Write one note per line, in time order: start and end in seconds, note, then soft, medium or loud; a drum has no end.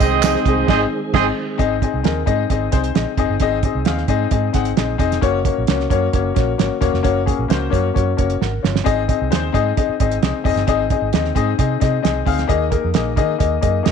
0.00 0.35 C2 loud
0.00 1.58 D#3 medium
0.00 1.58 G#3 medium
0.00 0.66 C4 medium
0.00 1.58 C4 medium
0.00 0.16 C4 medium
0.00 0.16 D#4 medium
0.00 0.66 G#4 medium
0.00 1.58 G#4 medium
0.00 0.16 G#4 medium
0.00 0.66 D#5 medium
0.00 0.17 D#5 medium
0.00 kick medium
0.00 closed hi-hat medium
0.00 tambourine medium
0.23 0.39 C4 medium
0.23 0.39 D#4 medium
0.23 0.39 G#4 medium
0.23 0.39 D#5 medium
0.23 snare loud
0.23 clap medium
0.23 closed hi-hat medium
0.23 tambourine loud
0.35 snare soft
0.45 0.63 C2 medium
0.45 0.61 C4 medium
0.45 0.61 D#4 medium
0.45 0.62 G#4 medium
0.45 0.62 D#5 medium
0.45 kick loud
0.45 closed hi-hat medium
0.68 0.84 G#1 loud
0.68 0.84 C4 loud
0.68 0.80 C4 medium
0.68 0.84 D#4 loud
0.68 0.80 G#4 medium
0.68 0.84 G#4 loud
0.68 0.80 D#5 medium
0.68 0.84 D#5 loud
0.68 kick loud
0.68 snare loud
0.68 crash medium
1.13 1.29 G#1 loud
1.13 1.29 C4 medium
1.13 1.26 C4 loud
1.13 1.29 D#4 medium
1.13 1.29 G#4 medium
1.13 1.25 G#4 loud
1.13 1.25 D#5 loud
1.13 1.30 D#5 loud
1.13 kick loud
1.13 snare loud
1.13 crash medium
1.58 1.85 G#1 loud
1.58 1.74 C4 loud
1.58 1.74 D#4 medium
1.58 1.74 G#4 medium
1.58 1.74 D#5 loud
1.58 kick loud
1.58 closed hi-hat medium
1.82 1.97 C4 medium
1.82 1.97 D#4 medium
1.82 1.98 G#4 medium
1.82 1.98 D#5 medium
1.82 kick medium
1.82 closed hi-hat medium
1.94 2.02 C2 medium
2.03 2.22 D#2 medium
2.03 2.19 C4 medium
2.03 2.19 D#4 medium
2.03 2.20 G#4 medium
2.03 2.20 A#4 medium
2.03 snare medium
2.03 closed hi-hat medium
2.26 2.44 G#2 medium
2.26 2.42 C4 medium
2.26 2.42 D#4 medium
2.26 2.42 G#4 medium
2.26 2.42 D#5 loud
2.26 kick medium
2.26 closed hi-hat medium
2.50 2.67 G#1 medium
2.50 2.65 C4 medium
2.50 2.65 D#4 medium
2.50 2.65 G#4 medium
2.50 2.66 D#5 medium
2.50 kick medium
2.50 closed hi-hat medium
2.71 2.90 C2 medium
2.71 2.87 C4 medium
2.71 2.87 D#4 medium
2.71 2.88 G#4 medium
2.71 2.88 C5 medium
2.71 kick medium
2.71 snare soft
2.71 closed hi-hat medium
2.84 closed hi-hat medium
2.94 3.04 A#1 medium
2.94 3.10 C4 medium
2.94 3.10 D#4 medium
2.94 3.10 G#4 medium
2.94 3.11 D#5 medium
2.94 snare medium
2.94 closed hi-hat medium
3.17 3.26 F#1 medium
3.17 3.33 C4 loud
3.17 3.33 D#4 medium
3.17 3.33 G#4 medium
3.17 3.34 D#5 loud
3.17 kick medium
3.17 closed hi-hat medium
3.30 3.38 G1 medium
3.40 3.66 G#1 loud
3.40 3.56 C4 loud
3.40 3.56 D#4 medium
3.40 3.56 G#4 medium
3.40 3.57 D#5 loud
3.40 kick medium
3.40 closed hi-hat medium
3.63 3.79 C4 medium
3.63 3.79 D#4 medium
3.63 3.79 G#4 medium
3.63 3.79 D#5 medium
3.63 kick medium
3.63 closed hi-hat medium
3.75 3.83 C2 medium
3.85 4.04 D#2 medium
3.85 4.01 C4 medium
3.85 4.01 D#4 medium
3.85 4.01 G#4 medium
3.85 4.02 F5 medium
3.85 snare medium
3.85 closed hi-hat medium
3.98 snare soft
4.08 4.25 G#2 medium
4.08 4.24 C4 loud
4.08 4.24 D#4 medium
4.08 4.24 G#4 medium
4.08 4.24 D#5 loud
4.08 kick medium
4.08 closed hi-hat medium
4.31 4.49 G#2 medium
4.31 4.47 C4 medium
4.31 4.46 D#4 medium
4.31 4.47 G#4 medium
4.31 4.47 D#5 medium
4.31 kick medium
4.31 closed hi-hat medium
4.53 4.72 G#1 medium
4.53 4.69 C4 medium
4.53 4.69 D#4 medium
4.53 4.69 G#4 medium
4.53 4.69 F#5 medium
4.53 kick medium
4.53 snare soft
4.53 closed hi-hat medium
4.65 closed hi-hat soft
4.77 4.94 A#1 medium
4.77 4.92 C4 medium
4.77 4.92 D#4 medium
4.77 4.92 G#4 medium
4.77 4.93 D#5 medium
4.77 snare medium
4.77 closed hi-hat medium
4.98 5.17 F1 medium
4.98 5.14 C4 loud
4.98 5.14 D#4 medium
4.98 5.15 G#4 medium
4.98 5.15 D#5 loud
4.98 kick medium
4.98 closed hi-hat medium
5.12 snare soft
5.12 closed hi-hat soft
5.21 5.48 F#1 loud
5.21 5.37 A#3 loud
5.21 5.38 C#4 medium
5.21 5.38 F#4 loud
5.21 5.38 C#5 loud
5.21 kick medium
5.21 closed hi-hat medium
5.45 5.60 A#3 medium
5.45 5.60 C#4 medium
5.45 5.61 F#4 medium
5.45 5.61 C#5 medium
5.45 kick medium
5.45 closed hi-hat medium
5.58 5.66 A#1 medium
5.67 5.85 C#2 medium
5.67 5.83 A#3 medium
5.67 5.83 C#4 medium
5.67 5.84 F#4 medium
5.67 5.84 C#5 medium
5.67 snare medium
5.67 closed hi-hat medium
5.80 snare soft
5.90 6.08 F#2 medium
5.90 6.05 A#3 loud
5.90 6.06 C#4 medium
5.90 6.06 F#4 medium
5.90 6.06 C#5 loud
5.90 kick medium
5.90 closed hi-hat medium
6.13 6.31 F#1 medium
6.13 6.28 A#3 medium
6.13 6.29 C#4 medium
6.13 6.29 F#4 medium
6.13 6.29 C#5 medium
6.13 kick medium
6.13 closed hi-hat medium
6.34 6.54 A#1 medium
6.34 6.50 A#3 medium
6.34 6.51 C#4 medium
6.34 6.51 F#4 medium
6.34 6.51 C#5 medium
6.34 kick medium
6.34 snare soft
6.34 closed hi-hat medium
6.58 6.68 G#1 medium
6.58 6.74 A#3 medium
6.58 6.74 C#4 medium
6.58 6.74 F#4 medium
6.58 6.75 C#5 medium
6.58 snare medium
6.58 closed hi-hat medium
6.80 6.90 E1 medium
6.80 6.96 A#3 loud
6.80 6.96 C#4 medium
6.80 6.97 F#4 medium
6.80 6.97 C#5 loud
6.80 kick medium
6.80 closed hi-hat medium
6.93 7.02 F1 medium
6.93 snare soft
7.03 7.30 F#1 medium
7.03 7.19 A#3 loud
7.03 7.19 C#4 medium
7.03 7.19 F#4 medium
7.03 7.19 C#5 loud
7.03 kick medium
7.03 closed hi-hat medium
7.25 7.41 A#3 medium
7.25 7.41 C#4 medium
7.25 7.42 F#4 medium
7.25 7.42 G#4 medium
7.25 kick medium
7.25 closed hi-hat medium
7.39 7.47 A#1 medium
7.48 7.67 C#2 medium
7.48 7.64 A#3 medium
7.48 7.65 C#4 medium
7.48 7.65 F#4 medium
7.48 7.65 C5 medium
7.48 snare loud
7.48 closed hi-hat medium
7.70 7.90 F#2 medium
7.70 7.86 A#3 medium
7.70 7.87 C#4 medium
7.70 7.87 F#4 medium
7.70 7.87 C#5 loud
7.70 kick medium
7.70 closed hi-hat medium
7.94 8.13 F#2 medium
7.94 8.10 A#3 medium
7.94 8.10 C#4 medium
7.94 8.10 F#4 medium
7.94 8.11 C#5 medium
7.94 kick medium
7.94 closed hi-hat medium
8.17 8.36 F#1 medium
8.17 8.33 A#3 medium
8.17 8.33 C#4 medium
8.17 8.33 F#4 medium
8.17 8.33 C#5 medium
8.17 kick medium
8.17 closed hi-hat medium
8.30 closed hi-hat soft
8.41 8.58 G#1 medium
8.41 8.63 A#4 medium
8.41 8.62 F#5 medium
8.41 snare medium
8.63 8.81 G1 medium
8.63 9.06 F4 medium
8.63 9.06 C#5 medium
8.63 snare medium
8.76 snare medium
8.84 9.12 G#1 medium
8.84 9.00 C4 loud
8.84 9.00 D#4 medium
8.84 9.01 G#4 loud
8.84 9.01 D#5 loud
8.84 kick medium
8.84 closed hi-hat medium
9.08 9.24 C4 medium
9.08 9.24 D#4 medium
9.08 9.24 G#4 medium
9.08 9.24 D#5 medium
9.08 kick medium
9.08 closed hi-hat medium
9.21 9.29 C2 medium
9.30 9.49 D#2 medium
9.30 9.46 C4 medium
9.30 9.46 D#4 medium
9.30 9.47 G#4 medium
9.30 9.47 C5 medium
9.30 snare loud
9.30 closed hi-hat medium
9.52 9.71 G#2 medium
9.52 9.68 C4 loud
9.52 9.69 D#4 medium
9.52 9.69 G#4 medium
9.52 9.69 D#5 loud
9.52 kick medium
9.52 closed hi-hat medium
9.77 9.92 C4 medium
9.77 9.92 D#4 medium
9.77 9.92 G#4 medium
9.77 9.93 D#5 medium
9.77 kick medium
9.77 closed hi-hat medium
9.89 muted fingered electric bass stroke soft
10.00 10.17 G#1 medium
10.00 10.15 C4 medium
10.00 10.15 D#4 medium
10.00 10.15 G#4 medium
10.00 10.16 D#5 medium
10.00 kick medium
10.00 closed hi-hat medium
10.11 closed hi-hat soft
10.22 10.31 C2 medium
10.22 10.38 C4 medium
10.22 10.38 D#4 medium
10.22 10.38 G#4 medium
10.22 10.38 D#5 medium
10.22 snare medium
10.22 closed hi-hat medium
10.44 10.54 F#1 medium
10.44 10.60 C4 medium
10.44 10.60 D#4 medium
10.44 10.60 G#4 medium
10.44 10.61 D#5 loud
10.44 kick medium
10.44 open hi-hat medium
10.56 10.64 G1 medium
10.56 snare soft
10.56 closed hi-hat soft
10.67 10.94 G#1 loud
10.67 10.83 C4 loud
10.67 10.83 D#4 loud
10.67 10.83 G#4 loud
10.67 10.83 D#5 loud
10.67 kick medium
10.67 closed hi-hat medium
10.90 11.06 C4 medium
10.90 11.06 D#4 medium
10.90 11.06 G#4 medium
10.90 11.06 D#5 medium
10.90 kick medium
10.90 closed hi-hat medium
11.02 11.10 G#1 medium
11.13 11.30 D#2 medium
11.13 11.28 C4 medium
11.13 11.29 D#4 medium
11.13 11.29 G#4 medium
11.13 11.29 D#5 medium
11.13 snare loud
11.13 closed hi-hat medium
11.25 snare soft
11.35 11.53 G#2 medium
11.35 11.51 C4 loud
11.35 11.51 D#4 medium
11.35 11.51 G#4 medium
11.35 11.51 D#5 loud
11.35 kick medium
11.35 closed hi-hat medium
11.58 11.76 C3 medium
11.58 11.74 C4 medium
11.58 11.74 D#4 medium
11.58 11.74 G#4 medium
11.58 11.74 D#5 medium
11.58 kick medium
11.58 closed hi-hat medium
11.80 11.99 C3 medium
11.80 11.96 C4 medium
11.80 11.96 D#4 medium
11.80 11.97 G#4 medium
11.80 11.97 D#5 medium
11.80 kick medium
11.80 snare soft
11.80 closed hi-hat medium
12.02 12.21 C2 medium
12.02 12.18 C4 medium
12.02 12.18 D#4 medium
12.02 12.19 G#4 medium
12.02 12.19 D#5 medium
12.02 snare medium
12.02 closed hi-hat medium
12.25 12.44 D2 medium
12.25 12.41 C4 medium
12.25 12.42 D#4 medium
12.25 12.42 G#4 medium
12.25 12.42 F5 loud
12.25 kick medium
12.25 open hi-hat medium
12.39 snare soft
12.39 closed hi-hat soft
12.47 12.75 D#2 loud
12.47 12.64 A#3 loud
12.47 12.64 D#4 medium
12.47 12.64 G#4 loud
12.47 12.64 D#5 loud
12.47 kick medium
12.47 closed hi-hat medium
12.70 12.86 A#3 medium
12.70 12.86 D#4 medium
12.70 12.87 G#4 medium
12.70 12.87 A#4 medium
12.70 kick medium
12.70 closed hi-hat medium
12.84 12.92 F2 medium
12.94 13.19 A#1 medium
12.94 13.10 A#3 medium
12.94 13.10 D#4 medium
12.94 13.10 G#4 medium
12.94 13.10 D#5 medium
12.94 snare loud
12.94 closed hi-hat medium
13.16 13.34 D#3 loud
13.16 13.32 A#3 medium
13.16 13.32 D#4 medium
13.16 13.33 G#4 medium
13.16 13.33 D#5 loud
13.16 kick medium
13.16 closed hi-hat medium
13.38 13.57 D#2 medium
13.38 13.54 A#3 medium
13.38 13.55 D#4 medium
13.38 13.55 G#4 medium
13.38 13.55 D#5 medium
13.38 kick medium
13.38 closed hi-hat medium
13.61 13.80 F#2 medium
13.61 13.77 A#3 medium
13.61 13.77 D#4 medium
13.61 13.78 G#4 medium
13.61 13.78 D#5 medium
13.61 kick medium
13.61 closed hi-hat medium
13.83 13.92 F2 medium
13.83 13.92 A#3 medium
13.83 13.92 D#4 medium
13.83 13.92 G#4 medium
13.83 13.92 D#5 medium
13.83 snare medium
13.83 closed hi-hat medium